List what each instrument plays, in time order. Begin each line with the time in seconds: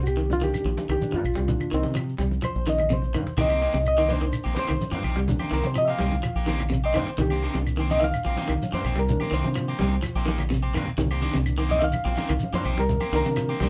Already playing: fingered electric bass C2, clean electric guitar C3
0.03 reed electric piano F#4, claves, shekere
0.08 reed electric piano G4
0.17 clean electric guitar D#3, shekere
0.30 reed electric piano D#3 A#3 D4 F4, cajon bass, cajon slap, high conga, shekere
0.42 clean electric guitar D#3, reed electric piano G4, high conga, low conga, shekere
0.54 cajon bass, cajon slap, high conga, claves, shekere
0.65 fingered electric bass A#1, clean electric guitar F3, shekere
0.77 cajon slap, high conga, shekere
0.89 fingered electric bass C2, clean electric guitar D#3, reed electric piano G4, cajon slap, low conga, claves, shekere
1.02 reed electric piano D#3 A#3 D4, high conga, shekere
1.12 fingered electric bass G2, clean electric guitar F3, reed electric piano F4, high conga, shekere
1.24 fingered electric bass A#1, cajon bass, claves, shekere
1.35 fingered electric bass C2, clean electric guitar G3, cajon slap, shekere
1.47 reed electric piano D#3 A#3 D4, cajon bass, cajon slap, low conga, shekere
1.60 cajon bass, claves, shekere
1.71 fingered electric bass C2, clean electric guitar D#3, reed electric piano D#3 C4, shekere
1.83 fingered electric bass C3, high conga, shekere
1.95 clean electric guitar F3, claves, shekere
2.07 cajon slap, shekere
2.18 fingered electric bass C2, clean electric guitar G3, cajon bass, high conga, shekere
2.31 high conga, shekere
2.42 clean electric guitar F3, reed electric piano C5, cajon bass, high conga, claves, shekere
2.55 fingered electric bass A#1, shekere
2.66 clean electric guitar D#3, reed electric piano D#5, cajon slap, high conga, shekere
2.78 cajon slap, low conga, claves, shekere
2.90 clean electric guitar C3, reed electric piano C5, high conga, shekere
3.02 high conga, shekere
3.14 fingered electric bass G2, clean electric guitar D#3, cajon bass, claves, shekere
3.26 cajon bass, cajon slap, shekere
3.37 fingered electric bass C2, clean electric guitar D#3 A#3 C4 G4, reed electric piano D#5, cajon bass, low conga, shekere
3.49 clean electric guitar A#3 C4 G4, claves, shekere
3.61 clean electric guitar D#3 A#3 C4 G4, shekere
3.74 fingered electric bass C2, clean electric guitar C3, high conga, shekere
3.85 reed electric piano D#5, cajon slap, claves, shekere
3.98 clean electric guitar D#3 A#3 C4 G4, shekere
4.08 clean electric guitar D#3 A#3 C4 G4, reed electric piano D#3 A#3 D4 B4, cajon bass, high conga, shekere
4.13 reed electric piano C5
4.21 clean electric guitar D#3, low conga, shekere
4.33 cajon bass, cajon slap, claves, shekere
4.44 fingered electric bass A#1, clean electric guitar A#3 C4 G4, shekere
4.55 clean electric guitar D#3 A#3 C4 G4, reed electric piano B4, cajon slap, high conga, shekere
4.59 reed electric piano C5
4.68 fingered electric bass C2, clean electric guitar D#3, cajon slap, low conga, claves, shekere
4.81 muted fingered electric bass stroke, high conga, shekere
4.91 fingered electric bass G2, clean electric guitar F3 A#3 C4 G4, high conga, shekere
5.03 fingered electric bass A#1, clean electric guitar D#3 C4 G4, cajon bass, cajon slap, claves, shekere
5.16 fingered electric bass C2, clean electric guitar G3, cajon slap, shekere
5.27 reed electric piano D#3 A#3 D4, cajon bass, low conga, shekere
5.39 clean electric guitar A#3 C4 G4, high conga, claves, shekere
5.51 fingered electric bass C2, clean electric guitar D#3 A#3 C4 G4, reed electric piano A#4, cajon slap, shekere
5.64 fingered electric bass C3, reed electric piano C5, high conga, shekere
5.75 clean electric guitar F3, reed electric piano D#5, claves, shekere
5.85 clean electric guitar A#3 C4 G4, reed electric piano E5, cajon slap, shekere
5.90 reed electric piano F5
5.99 fingered electric bass C2, clean electric guitar D#3 G3 A#3 C4 G4, cajon bass, high conga, shekere
6.12 high conga, low conga, shekere
6.23 clean electric guitar F3, cajon bass, claves, shekere
6.35 fingered electric bass A#1, clean electric guitar A#3 G4, shekere
6.46 clean electric guitar D#3 A#3 C4 G4, cajon slap, high conga, shekere
6.60 cajon slap, low conga, claves, shekere
6.70 clean electric guitar C3, high conga, shekere
6.84 clean electric guitar C4 G4, reed electric piano D#5, shekere
6.94 fingered electric bass G2, clean electric guitar D#3 A#3 C4 G4, reed electric piano C5, cajon bass, claves, shekere
7.07 cajon slap, shekere
7.18 fingered electric bass C2, reed electric piano D#3 A#3 D4 G4, clean electric guitar D#3, cajon bass, cajon slap, low conga, shekere
7.30 clean electric guitar A#3 C4 G4, claves, shekere
7.43 clean electric guitar D#3 A#3 C4 G4, cajon slap, shekere
7.54 fingered electric bass C2, clean electric guitar C3, high conga, shekere
7.67 claves, shekere
7.77 clean electric guitar D#3 A#3 C4 G4, cajon slap, shekere
7.90 clean electric guitar D#3 A#3 C4 G4, reed electric piano D#5, cajon bass, cajon slap, high conga, shekere
8.00 clean electric guitar D#3, reed electric piano E5, high conga, low conga, shekere
8.04 reed electric piano F5
8.13 cajon bass, cajon slap, claves, shekere
8.25 fingered electric bass A#1, clean electric guitar F3 A#3 C4 G4, shekere
8.37 clean electric guitar D#3 A#3 C4 G4, cajon slap, high conga, shekere
8.48 fingered electric bass C2, clean electric guitar D#3, cajon slap, low conga, claves, shekere
8.60 cajon slap, high conga, shekere
8.72 fingered electric bass G2, clean electric guitar A#3 C4 G4, reed electric piano C5, muted clean electric guitar stroke, high conga, shekere
8.84 fingered electric bass A#1, clean electric guitar D#3 A#3 C4 G4, cajon bass, claves, shekere
8.96 fingered electric bass C2, clean electric guitar G3, reed electric piano A#4, cajon slap, shekere
9.09 reed electric piano D#3 A#3 D4, cajon bass, low conga, shekere
9.20 clean electric guitar A#3 C4 G4, cajon bass, high conga, claves, shekere
9.31 fingered electric bass C2, clean electric guitar D#3 A#3 C4 G4, reed electric piano C5, shekere
9.44 fingered electric bass C3, cajon slap, high conga, shekere
9.55 clean electric guitar F3, cajon slap, claves, shekere
9.67 clean electric guitar A#3 C4 G4, cajon slap, shekere
9.79 fingered electric bass C2, clean electric guitar D#3 G3 A#3 C4 G4, cajon bass, high conga, shekere
9.94 shekere
10.03 clean electric guitar F3, cajon bass, claves, shekere
10.15 fingered electric bass A#1, clean electric guitar A#3 C4 G4, shekere
10.25 clean electric guitar D#3 A#3 G4, cajon slap, high conga
10.30 shekere
10.38 cajon slap, low conga, claves, shekere
10.50 clean electric guitar C3, high conga, shekere
10.63 clean electric guitar C4 G4, muted clean electric guitar stroke, shekere
10.74 fingered electric bass G2, clean electric guitar D#3 A#3 C4, muted clean electric guitar stroke, cajon bass, cajon slap, claves, shekere
10.86 cajon bass, cajon slap, shekere
10.98 fingered electric bass C2, clean electric guitar D#3, cajon bass, low conga, shekere
11.11 clean electric guitar A#3 C4 G4, claves, shekere
11.21 clean electric guitar D#3 A#3 C4 G4, reed electric piano D#3 A#3 D4, shekere
11.34 fingered electric bass C2, clean electric guitar C3, cajon slap, high conga, shekere
11.46 claves, shekere
11.58 clean electric guitar D#3 A#3 C4 G4, shekere
11.69 clean electric guitar D#3 A#3 C4 G4, reed electric piano D#5, cajon bass, high conga, shekere
11.79 clean electric guitar D#3, reed electric piano E5, low conga, shekere
11.84 reed electric piano F5
11.92 cajon bass, high conga, claves, shekere
12.04 fingered electric bass A#1, clean electric guitar F3 A#3 C4 G4, shekere
12.15 clean electric guitar D#3 A#3 C4 G4, cajon slap, high conga, shekere
12.28 fingered electric bass C2, clean electric guitar D#3, cajon slap, low conga, claves, shekere
12.39 high conga, shekere
12.53 fingered electric bass G2, clean electric guitar F3 A#3 C4 G4, reed electric piano C5, high conga, shekere
12.64 fingered electric bass A#1, clean electric guitar D#3 C4 G4, muted clean electric guitar stroke, cajon bass, claves, shekere
12.77 fingered electric bass C2, clean electric guitar G3, reed electric piano A#4, cajon slap, shekere
12.89 cajon bass, low conga, shekere
13.00 clean electric guitar A#3 C4 G4, high conga, claves, shekere
13.12 fingered electric bass C2, clean electric guitar D#3 A#3 C4 G4, reed electric piano D#3 A#3 D4 A#4, shekere
13.24 fingered electric bass C3, high conga, shekere
13.36 clean electric guitar F3, claves, shekere
13.49 clean electric guitar A#3 C4 G4, shekere
13.60 fingered electric bass C2, clean electric guitar D#3 G3 A#3 C4 G4, cajon bass, high conga, shekere